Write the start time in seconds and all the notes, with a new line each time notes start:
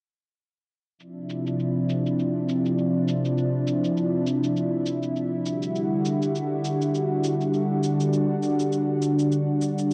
0.98 C3 F3 D4 E4, cabasa
1.30 cabasa
1.47 cabasa
1.60 cabasa
1.90 cabasa
2.06 cabasa
2.19 cabasa
2.49 cabasa
2.66 cabasa
2.79 cabasa
3.08 cabasa
3.25 cabasa
3.38 cabasa
3.68 cabasa
3.84 cabasa
3.97 cabasa
4.27 cabasa
4.44 cabasa
4.56 cabasa
4.86 cabasa
5.03 cabasa
5.16 cabasa
5.44 D3 G3 F#4, cabasa
5.62 cabasa
5.75 cabasa
6.05 cabasa
6.22 cabasa
6.35 cabasa
6.65 cabasa
6.82 cabasa
6.95 cabasa
7.24 cabasa
7.41 cabasa
7.54 cabasa
7.82 D4, cabasa
8.00 cabasa
8.13 cabasa
8.43 cabasa
8.60 cabasa
8.72 cabasa
9.02 cabasa
9.19 cabasa
9.32 cabasa
9.62 cabasa
9.78 cabasa